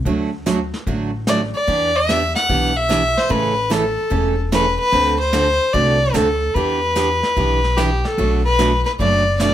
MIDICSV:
0, 0, Header, 1, 5, 480
1, 0, Start_track
1, 0, Tempo, 406229
1, 65, Time_signature, 4, 2, 24, 8
1, 11271, End_track
2, 0, Start_track
2, 0, Title_t, "Fiddle"
2, 0, Program_c, 0, 110
2, 1517, Note_on_c, 0, 74, 91
2, 1659, Note_off_c, 0, 74, 0
2, 1830, Note_on_c, 0, 74, 101
2, 2313, Note_on_c, 0, 76, 107
2, 2331, Note_off_c, 0, 74, 0
2, 2776, Note_off_c, 0, 76, 0
2, 2783, Note_on_c, 0, 78, 96
2, 3267, Note_on_c, 0, 76, 96
2, 3285, Note_off_c, 0, 78, 0
2, 3757, Note_on_c, 0, 72, 93
2, 3775, Note_off_c, 0, 76, 0
2, 3908, Note_on_c, 0, 71, 94
2, 3926, Note_off_c, 0, 72, 0
2, 4393, Note_on_c, 0, 69, 90
2, 4411, Note_off_c, 0, 71, 0
2, 5189, Note_off_c, 0, 69, 0
2, 5349, Note_on_c, 0, 71, 90
2, 5645, Note_off_c, 0, 71, 0
2, 5670, Note_on_c, 0, 71, 104
2, 6114, Note_off_c, 0, 71, 0
2, 6143, Note_on_c, 0, 72, 104
2, 6775, Note_on_c, 0, 74, 93
2, 6792, Note_off_c, 0, 72, 0
2, 7260, Note_on_c, 0, 69, 93
2, 7278, Note_off_c, 0, 74, 0
2, 7733, Note_on_c, 0, 71, 95
2, 7751, Note_off_c, 0, 69, 0
2, 9181, Note_on_c, 0, 67, 88
2, 9198, Note_off_c, 0, 71, 0
2, 9509, Note_on_c, 0, 69, 90
2, 9527, Note_off_c, 0, 67, 0
2, 9981, Note_off_c, 0, 69, 0
2, 9988, Note_on_c, 0, 71, 97
2, 10434, Note_off_c, 0, 71, 0
2, 10464, Note_on_c, 0, 71, 83
2, 10536, Note_off_c, 0, 71, 0
2, 10622, Note_on_c, 0, 74, 91
2, 11070, Note_off_c, 0, 74, 0
2, 11108, Note_on_c, 0, 74, 96
2, 11271, Note_off_c, 0, 74, 0
2, 11271, End_track
3, 0, Start_track
3, 0, Title_t, "Steel-string acoustic guitar"
3, 0, Program_c, 1, 25
3, 67, Note_on_c, 1, 50, 57
3, 74, Note_on_c, 1, 54, 56
3, 76, Note_on_c, 1, 57, 59
3, 76, Note_on_c, 1, 66, 62
3, 78, Note_on_c, 1, 62, 56
3, 335, Note_off_c, 1, 50, 0
3, 339, Note_off_c, 1, 54, 0
3, 340, Note_off_c, 1, 57, 0
3, 340, Note_off_c, 1, 66, 0
3, 341, Note_off_c, 1, 62, 0
3, 543, Note_on_c, 1, 50, 72
3, 549, Note_on_c, 1, 54, 77
3, 550, Note_on_c, 1, 66, 74
3, 552, Note_on_c, 1, 57, 69
3, 553, Note_on_c, 1, 62, 78
3, 687, Note_off_c, 1, 50, 0
3, 690, Note_off_c, 1, 54, 0
3, 690, Note_off_c, 1, 66, 0
3, 691, Note_off_c, 1, 57, 0
3, 692, Note_off_c, 1, 62, 0
3, 1029, Note_on_c, 1, 50, 56
3, 1030, Note_on_c, 1, 54, 51
3, 1032, Note_on_c, 1, 57, 55
3, 1040, Note_on_c, 1, 62, 63
3, 1040, Note_on_c, 1, 66, 55
3, 1297, Note_off_c, 1, 50, 0
3, 1297, Note_off_c, 1, 54, 0
3, 1298, Note_off_c, 1, 57, 0
3, 1302, Note_off_c, 1, 62, 0
3, 1302, Note_off_c, 1, 66, 0
3, 1506, Note_on_c, 1, 50, 76
3, 1510, Note_on_c, 1, 54, 71
3, 1515, Note_on_c, 1, 57, 79
3, 1515, Note_on_c, 1, 62, 82
3, 1516, Note_on_c, 1, 66, 82
3, 1648, Note_off_c, 1, 50, 0
3, 1650, Note_off_c, 1, 54, 0
3, 1652, Note_off_c, 1, 57, 0
3, 1653, Note_off_c, 1, 62, 0
3, 1653, Note_off_c, 1, 66, 0
3, 1977, Note_on_c, 1, 52, 59
3, 1985, Note_on_c, 1, 59, 57
3, 1993, Note_on_c, 1, 62, 59
3, 1994, Note_on_c, 1, 67, 64
3, 2250, Note_off_c, 1, 52, 0
3, 2254, Note_off_c, 1, 59, 0
3, 2258, Note_off_c, 1, 62, 0
3, 2259, Note_off_c, 1, 67, 0
3, 2469, Note_on_c, 1, 52, 65
3, 2476, Note_on_c, 1, 59, 69
3, 2476, Note_on_c, 1, 62, 75
3, 2484, Note_on_c, 1, 67, 83
3, 2609, Note_off_c, 1, 52, 0
3, 2613, Note_off_c, 1, 59, 0
3, 2613, Note_off_c, 1, 62, 0
3, 2617, Note_off_c, 1, 67, 0
3, 2945, Note_on_c, 1, 52, 56
3, 2947, Note_on_c, 1, 59, 54
3, 2953, Note_on_c, 1, 62, 62
3, 2955, Note_on_c, 1, 67, 56
3, 3214, Note_off_c, 1, 52, 0
3, 3215, Note_off_c, 1, 59, 0
3, 3218, Note_off_c, 1, 62, 0
3, 3219, Note_off_c, 1, 67, 0
3, 3414, Note_on_c, 1, 52, 71
3, 3421, Note_on_c, 1, 59, 80
3, 3426, Note_on_c, 1, 62, 78
3, 3428, Note_on_c, 1, 67, 83
3, 3562, Note_off_c, 1, 52, 0
3, 3565, Note_off_c, 1, 59, 0
3, 3568, Note_off_c, 1, 62, 0
3, 3569, Note_off_c, 1, 67, 0
3, 3888, Note_on_c, 1, 49, 55
3, 3897, Note_on_c, 1, 61, 63
3, 3899, Note_on_c, 1, 52, 61
3, 3899, Note_on_c, 1, 57, 57
3, 3902, Note_on_c, 1, 69, 62
3, 4165, Note_off_c, 1, 49, 0
3, 4170, Note_off_c, 1, 61, 0
3, 4171, Note_off_c, 1, 52, 0
3, 4171, Note_off_c, 1, 57, 0
3, 4172, Note_off_c, 1, 69, 0
3, 4368, Note_on_c, 1, 49, 69
3, 4375, Note_on_c, 1, 52, 77
3, 4383, Note_on_c, 1, 57, 75
3, 4384, Note_on_c, 1, 61, 75
3, 4387, Note_on_c, 1, 69, 79
3, 4519, Note_off_c, 1, 49, 0
3, 4522, Note_off_c, 1, 52, 0
3, 4526, Note_off_c, 1, 57, 0
3, 4526, Note_off_c, 1, 61, 0
3, 4528, Note_off_c, 1, 69, 0
3, 4846, Note_on_c, 1, 49, 55
3, 4851, Note_on_c, 1, 52, 58
3, 4855, Note_on_c, 1, 61, 59
3, 4857, Note_on_c, 1, 57, 59
3, 4861, Note_on_c, 1, 69, 61
3, 5124, Note_off_c, 1, 49, 0
3, 5126, Note_off_c, 1, 52, 0
3, 5128, Note_off_c, 1, 61, 0
3, 5129, Note_off_c, 1, 57, 0
3, 5132, Note_off_c, 1, 69, 0
3, 5344, Note_on_c, 1, 49, 74
3, 5345, Note_on_c, 1, 57, 77
3, 5346, Note_on_c, 1, 52, 76
3, 5351, Note_on_c, 1, 61, 79
3, 5351, Note_on_c, 1, 69, 79
3, 5486, Note_off_c, 1, 49, 0
3, 5487, Note_off_c, 1, 52, 0
3, 5487, Note_off_c, 1, 57, 0
3, 5490, Note_off_c, 1, 61, 0
3, 5490, Note_off_c, 1, 69, 0
3, 5817, Note_on_c, 1, 50, 57
3, 5822, Note_on_c, 1, 57, 55
3, 5825, Note_on_c, 1, 60, 62
3, 5829, Note_on_c, 1, 66, 61
3, 5831, Note_on_c, 1, 69, 62
3, 6089, Note_off_c, 1, 50, 0
3, 6092, Note_off_c, 1, 57, 0
3, 6094, Note_off_c, 1, 60, 0
3, 6096, Note_off_c, 1, 66, 0
3, 6096, Note_off_c, 1, 69, 0
3, 6295, Note_on_c, 1, 50, 74
3, 6297, Note_on_c, 1, 57, 73
3, 6303, Note_on_c, 1, 60, 69
3, 6304, Note_on_c, 1, 66, 74
3, 6310, Note_on_c, 1, 69, 71
3, 6442, Note_off_c, 1, 50, 0
3, 6443, Note_off_c, 1, 57, 0
3, 6446, Note_off_c, 1, 60, 0
3, 6446, Note_off_c, 1, 66, 0
3, 6449, Note_off_c, 1, 69, 0
3, 6778, Note_on_c, 1, 50, 57
3, 6783, Note_on_c, 1, 57, 57
3, 6787, Note_on_c, 1, 60, 60
3, 6788, Note_on_c, 1, 69, 61
3, 6789, Note_on_c, 1, 66, 55
3, 7050, Note_off_c, 1, 50, 0
3, 7052, Note_off_c, 1, 57, 0
3, 7055, Note_off_c, 1, 60, 0
3, 7055, Note_off_c, 1, 66, 0
3, 7055, Note_off_c, 1, 69, 0
3, 7255, Note_on_c, 1, 50, 76
3, 7256, Note_on_c, 1, 57, 71
3, 7258, Note_on_c, 1, 60, 75
3, 7263, Note_on_c, 1, 66, 75
3, 7268, Note_on_c, 1, 69, 84
3, 7402, Note_off_c, 1, 50, 0
3, 7402, Note_off_c, 1, 57, 0
3, 7403, Note_off_c, 1, 60, 0
3, 7406, Note_off_c, 1, 66, 0
3, 7409, Note_off_c, 1, 69, 0
3, 7752, Note_on_c, 1, 52, 60
3, 7757, Note_on_c, 1, 59, 51
3, 7757, Note_on_c, 1, 62, 64
3, 7761, Note_on_c, 1, 67, 63
3, 8017, Note_off_c, 1, 52, 0
3, 8020, Note_off_c, 1, 59, 0
3, 8020, Note_off_c, 1, 62, 0
3, 8022, Note_off_c, 1, 67, 0
3, 8218, Note_on_c, 1, 52, 71
3, 8223, Note_on_c, 1, 59, 76
3, 8228, Note_on_c, 1, 62, 74
3, 8230, Note_on_c, 1, 67, 75
3, 8363, Note_off_c, 1, 52, 0
3, 8366, Note_off_c, 1, 59, 0
3, 8368, Note_off_c, 1, 62, 0
3, 8369, Note_off_c, 1, 67, 0
3, 8703, Note_on_c, 1, 52, 53
3, 8711, Note_on_c, 1, 59, 55
3, 8712, Note_on_c, 1, 62, 58
3, 8715, Note_on_c, 1, 67, 59
3, 8973, Note_off_c, 1, 52, 0
3, 8977, Note_off_c, 1, 59, 0
3, 8977, Note_off_c, 1, 62, 0
3, 8979, Note_off_c, 1, 67, 0
3, 9188, Note_on_c, 1, 52, 72
3, 9188, Note_on_c, 1, 59, 79
3, 9192, Note_on_c, 1, 62, 79
3, 9194, Note_on_c, 1, 67, 74
3, 9329, Note_off_c, 1, 52, 0
3, 9329, Note_off_c, 1, 59, 0
3, 9330, Note_off_c, 1, 62, 0
3, 9332, Note_off_c, 1, 67, 0
3, 9668, Note_on_c, 1, 47, 55
3, 9669, Note_on_c, 1, 54, 60
3, 9674, Note_on_c, 1, 57, 64
3, 9677, Note_on_c, 1, 66, 67
3, 9680, Note_on_c, 1, 62, 61
3, 9936, Note_off_c, 1, 47, 0
3, 9936, Note_off_c, 1, 54, 0
3, 9939, Note_off_c, 1, 57, 0
3, 9940, Note_off_c, 1, 66, 0
3, 9942, Note_off_c, 1, 62, 0
3, 10147, Note_on_c, 1, 47, 69
3, 10147, Note_on_c, 1, 54, 73
3, 10153, Note_on_c, 1, 62, 77
3, 10155, Note_on_c, 1, 57, 69
3, 10155, Note_on_c, 1, 66, 83
3, 10288, Note_off_c, 1, 47, 0
3, 10289, Note_off_c, 1, 54, 0
3, 10292, Note_off_c, 1, 62, 0
3, 10293, Note_off_c, 1, 57, 0
3, 10293, Note_off_c, 1, 66, 0
3, 10633, Note_on_c, 1, 47, 53
3, 10637, Note_on_c, 1, 54, 57
3, 10642, Note_on_c, 1, 57, 60
3, 10643, Note_on_c, 1, 62, 59
3, 10648, Note_on_c, 1, 66, 62
3, 10898, Note_off_c, 1, 47, 0
3, 10901, Note_off_c, 1, 54, 0
3, 10903, Note_off_c, 1, 57, 0
3, 10904, Note_off_c, 1, 62, 0
3, 10906, Note_off_c, 1, 66, 0
3, 11108, Note_on_c, 1, 47, 66
3, 11110, Note_on_c, 1, 54, 71
3, 11114, Note_on_c, 1, 66, 83
3, 11115, Note_on_c, 1, 57, 75
3, 11117, Note_on_c, 1, 62, 79
3, 11250, Note_off_c, 1, 47, 0
3, 11250, Note_off_c, 1, 54, 0
3, 11252, Note_off_c, 1, 66, 0
3, 11253, Note_off_c, 1, 57, 0
3, 11254, Note_off_c, 1, 62, 0
3, 11271, End_track
4, 0, Start_track
4, 0, Title_t, "Upright bass"
4, 0, Program_c, 2, 32
4, 60, Note_on_c, 2, 38, 86
4, 830, Note_off_c, 2, 38, 0
4, 1023, Note_on_c, 2, 33, 86
4, 1792, Note_off_c, 2, 33, 0
4, 1982, Note_on_c, 2, 40, 88
4, 2751, Note_off_c, 2, 40, 0
4, 2944, Note_on_c, 2, 35, 81
4, 3712, Note_off_c, 2, 35, 0
4, 3903, Note_on_c, 2, 33, 84
4, 4671, Note_off_c, 2, 33, 0
4, 4861, Note_on_c, 2, 28, 86
4, 5630, Note_off_c, 2, 28, 0
4, 5818, Note_on_c, 2, 38, 89
4, 6588, Note_off_c, 2, 38, 0
4, 6782, Note_on_c, 2, 36, 83
4, 7191, Note_off_c, 2, 36, 0
4, 7256, Note_on_c, 2, 38, 84
4, 7667, Note_off_c, 2, 38, 0
4, 7741, Note_on_c, 2, 40, 87
4, 8510, Note_off_c, 2, 40, 0
4, 8705, Note_on_c, 2, 35, 82
4, 9473, Note_off_c, 2, 35, 0
4, 9662, Note_on_c, 2, 35, 83
4, 10432, Note_off_c, 2, 35, 0
4, 10623, Note_on_c, 2, 30, 83
4, 11271, Note_off_c, 2, 30, 0
4, 11271, End_track
5, 0, Start_track
5, 0, Title_t, "Drums"
5, 63, Note_on_c, 9, 25, 45
5, 64, Note_on_c, 9, 36, 34
5, 182, Note_off_c, 9, 36, 0
5, 547, Note_on_c, 9, 38, 66
5, 547, Note_on_c, 9, 44, 57
5, 665, Note_off_c, 9, 38, 0
5, 665, Note_off_c, 9, 44, 0
5, 870, Note_on_c, 9, 38, 39
5, 988, Note_off_c, 9, 38, 0
5, 1023, Note_off_c, 9, 25, 0
5, 1023, Note_on_c, 9, 25, 50
5, 1025, Note_on_c, 9, 36, 36
5, 1143, Note_off_c, 9, 36, 0
5, 1501, Note_on_c, 9, 38, 72
5, 1501, Note_on_c, 9, 44, 59
5, 1619, Note_off_c, 9, 38, 0
5, 1619, Note_off_c, 9, 44, 0
5, 1985, Note_off_c, 9, 25, 0
5, 1985, Note_on_c, 9, 25, 47
5, 1986, Note_on_c, 9, 36, 36
5, 2104, Note_off_c, 9, 36, 0
5, 2468, Note_on_c, 9, 38, 63
5, 2468, Note_on_c, 9, 44, 57
5, 2586, Note_off_c, 9, 38, 0
5, 2586, Note_off_c, 9, 44, 0
5, 2789, Note_on_c, 9, 38, 38
5, 2907, Note_off_c, 9, 38, 0
5, 2946, Note_off_c, 9, 25, 0
5, 2946, Note_on_c, 9, 25, 50
5, 2947, Note_on_c, 9, 36, 31
5, 3065, Note_off_c, 9, 36, 0
5, 3433, Note_on_c, 9, 38, 64
5, 3433, Note_on_c, 9, 44, 62
5, 3551, Note_off_c, 9, 38, 0
5, 3551, Note_off_c, 9, 44, 0
5, 3753, Note_on_c, 9, 38, 38
5, 3871, Note_off_c, 9, 38, 0
5, 3907, Note_on_c, 9, 36, 36
5, 3917, Note_off_c, 9, 25, 0
5, 3917, Note_on_c, 9, 25, 46
5, 4025, Note_off_c, 9, 36, 0
5, 4386, Note_on_c, 9, 38, 62
5, 4386, Note_on_c, 9, 44, 62
5, 4504, Note_off_c, 9, 38, 0
5, 4504, Note_off_c, 9, 44, 0
5, 4862, Note_on_c, 9, 36, 34
5, 4863, Note_off_c, 9, 25, 0
5, 4863, Note_on_c, 9, 25, 51
5, 4980, Note_off_c, 9, 36, 0
5, 5344, Note_on_c, 9, 38, 71
5, 5344, Note_on_c, 9, 44, 64
5, 5462, Note_off_c, 9, 38, 0
5, 5462, Note_off_c, 9, 44, 0
5, 5821, Note_off_c, 9, 25, 0
5, 5821, Note_on_c, 9, 25, 44
5, 5823, Note_on_c, 9, 36, 34
5, 5941, Note_off_c, 9, 36, 0
5, 6296, Note_on_c, 9, 38, 65
5, 6296, Note_on_c, 9, 44, 54
5, 6414, Note_off_c, 9, 38, 0
5, 6414, Note_off_c, 9, 44, 0
5, 6779, Note_off_c, 9, 25, 0
5, 6779, Note_on_c, 9, 25, 43
5, 6782, Note_on_c, 9, 36, 35
5, 6900, Note_off_c, 9, 36, 0
5, 7263, Note_on_c, 9, 38, 66
5, 7263, Note_on_c, 9, 44, 68
5, 7381, Note_off_c, 9, 38, 0
5, 7381, Note_off_c, 9, 44, 0
5, 7742, Note_off_c, 9, 25, 0
5, 7742, Note_on_c, 9, 25, 49
5, 7743, Note_on_c, 9, 36, 32
5, 7862, Note_off_c, 9, 36, 0
5, 8223, Note_on_c, 9, 38, 68
5, 8223, Note_on_c, 9, 44, 56
5, 8341, Note_off_c, 9, 38, 0
5, 8341, Note_off_c, 9, 44, 0
5, 8546, Note_on_c, 9, 38, 38
5, 8664, Note_off_c, 9, 38, 0
5, 8705, Note_off_c, 9, 25, 0
5, 8705, Note_on_c, 9, 25, 50
5, 8706, Note_on_c, 9, 36, 34
5, 8824, Note_off_c, 9, 36, 0
5, 9028, Note_on_c, 9, 38, 36
5, 9146, Note_off_c, 9, 38, 0
5, 9188, Note_on_c, 9, 38, 69
5, 9188, Note_on_c, 9, 44, 55
5, 9306, Note_off_c, 9, 38, 0
5, 9306, Note_off_c, 9, 44, 0
5, 9510, Note_on_c, 9, 38, 40
5, 9628, Note_off_c, 9, 38, 0
5, 9667, Note_on_c, 9, 36, 35
5, 9670, Note_off_c, 9, 25, 0
5, 9670, Note_on_c, 9, 25, 47
5, 9785, Note_off_c, 9, 36, 0
5, 10148, Note_on_c, 9, 38, 68
5, 10148, Note_on_c, 9, 44, 50
5, 10267, Note_off_c, 9, 38, 0
5, 10267, Note_off_c, 9, 44, 0
5, 10470, Note_on_c, 9, 38, 36
5, 10588, Note_off_c, 9, 38, 0
5, 10626, Note_on_c, 9, 36, 35
5, 10627, Note_off_c, 9, 25, 0
5, 10627, Note_on_c, 9, 25, 51
5, 10744, Note_off_c, 9, 36, 0
5, 11103, Note_on_c, 9, 38, 70
5, 11103, Note_on_c, 9, 44, 63
5, 11221, Note_off_c, 9, 38, 0
5, 11221, Note_off_c, 9, 44, 0
5, 11271, Note_off_c, 9, 25, 0
5, 11271, End_track
0, 0, End_of_file